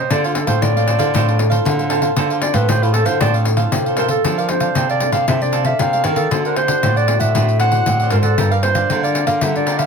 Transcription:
Already playing: C5
0.10 D3 C4 D4 F4 A4 C5 D5 F5, pandeiro
0.24 F4 A4 C5 F5, pandeiro
0.35 C4 F4 A4, muted cavaquinho stroke, pandeiro
0.47 A2 A4 C5 F5, pandeiro
0.62 A2 D5, pandeiro
0.76 C4 F4 A4 C5 F5, pandeiro
0.86 D4 A4 C5 F5, pandeiro
0.99 D3 C4 F4 A4 C5 F5, pandeiro
1.14 A2 D3 C4 D4 F4 A4 C5 F5, pandeiro
1.28 A4 C5 F5, pandeiro
1.39 C4 F4 A4, muted cavaquinho stroke, pandeiro
1.50 A4 C5 F5, pandeiro
1.65 A2 D3, pandeiro
1.79 C4 F4 A4 C5 F5, pandeiro
1.90 D4 A4 C5 F5, pandeiro
2.02 C4 F4 A4 C5 F5, pandeiro
2.16 D3 D4 A4 C5 F5, pandeiro
2.30 A4 C5 F5, pandeiro
2.41 C4 F4 A4 D5, muted cavaquinho stroke, pandeiro
2.54 A2 A4 B4 C5 F5, pandeiro
2.68 A2 C5, pandeiro
2.82 C4 E4 F4 A4 C5 F5, pandeiro
2.94 C4 D4 F4 A4 C5 F5, pandeiro
3.05 D3 A4 C5 F5, pandeiro
3.20 A2 D3 C4 D4 F4 A4 C5 D5 F5, pandeiro
3.34 A4 C5 F5, pandeiro
3.45 muted cavaquinho stroke, pandeiro
3.57 C4 F4 A4 C5 F5, pandeiro
3.72 A2 C3, pandeiro
3.86 A4 C5 F5, pandeiro
3.97 C4 D4 F4 A4 A#4 C5 F5, pandeiro
4.08 A4 C5 F5, pandeiro
4.24 F3 C4 D4 A4 D5 F5, pandeiro
4.38 A4 A#4 D5 F5, pandeiro
4.49 C4 D4 A4 C5, muted cavaquinho stroke, pandeiro
4.60 A4 D5 F5, pandeiro
4.75 C3 D4 A4 D5 F5, pandeiro
4.89 A4 D5 F5, pandeiro
5.00 C4 D4 A4, pandeiro
5.12 C3 A4 D5 F5, pandeiro
5.27 C3 F3 C4 D4 A4 D5 E5 F5, pandeiro
5.41 C4 D4 A4 D5, muted cavaquinho stroke, pandeiro
5.52 D4 A4 D5 F5, pandeiro
5.64 C4 D4 A4 D5 E5 F5, pandeiro
5.79 C3 F5, pandeiro
5.93 C4 D4 A4 D5 F5, pandeiro
6.04 D#3 C4 D4 A4 A#4 D5 F5, pandeiro
6.16 A4 D5 F5, pandeiro
6.31 D3 C4 D4 F#4 A4 C5 D5 F#5, pandeiro
6.45 A#4 C5 D5 F#5, pandeiro
6.56 C5, muted cavaquinho stroke, pandeiro
6.68 C4 F#4 A4 C5 D5 F#5, pandeiro
6.83 A2 D4 C5 D5 F#5, pandeiro
6.96 C5 D5 F#5, pandeiro
7.08 C4 F#4 A4, pandeiro
7.19 A2 C5 D5 E5 F#5, pandeiro
7.35 A2 D3 C4 D4 F#4 A4 C5 D5 F#5, pandeiro
7.49 muted cavaquinho stroke, pandeiro
7.60 D4 C5 D5 F#5, pandeiro
7.71 C4 F#4 A4 C5 D5 F#5, pandeiro
7.86 A2, pandeiro
8.00 C5 D5 F#5, pandeiro
8.10 G#2 C4 D4 F#4 A4 A#4 C5 D5 F#5, pandeiro
8.23 A4 C5 D5 F#5, pandeiro
8.38 G2 G3 D4 F4 G4 A#4 D5 F5, pandeiro
8.51 A#4 D5 F5, pandeiro
8.63 D4 F4 A#4 C5, muted cavaquinho stroke, pandeiro
8.75 A#4 D5 F5, pandeiro
8.90 D3 G4 A#4 D5 F5, pandeiro
9.03 D4 F4 A#4 D5 F5, pandeiro
9.15 pandeiro
9.27 D3 A#4 D5 F5, pandeiro
9.41 D3 G3 G4 A#4 D5 E5 F5, pandeiro
9.56 D4 F4 A#4 D5, muted cavaquinho stroke, pandeiro
9.66 G4 A#4 D5 F5, pandeiro
9.78 A#4 D5 E5 F5, pandeiro

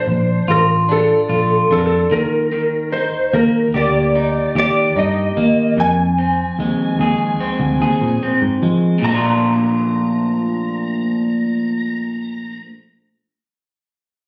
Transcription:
Already playing: D4 F4 C5
0.07 A#1
0.48 A1 F4 A#4
0.89 D4 A4
1.29 A#1 F4
1.71 F2 D4 A4
1.78 A#4
1.86 A4
2.11 D#2 D#3 A#4
2.52 D#3
2.92 D#4 C5
3.33 D#2 A#3 A#4
3.74 D2 G4 D5
4.15 D#4
4.55 D#2 G4 D5
4.96 G2 D#4 D#5
5.37 D#2 A#3
5.77 F2 G#5
6.18 C4
6.59 D#2 G#3
6.99 D#2 G#4
7.41 C4
7.60 D2
7.80 D#2 G#4
8.01 A#2
8.21 C4, muted picked electric bass stroke
8.42 G#2
8.62 F3 G#3
8.98 A#1 A#2
9.03 F3 A3 A#5
9.11 D4 F4

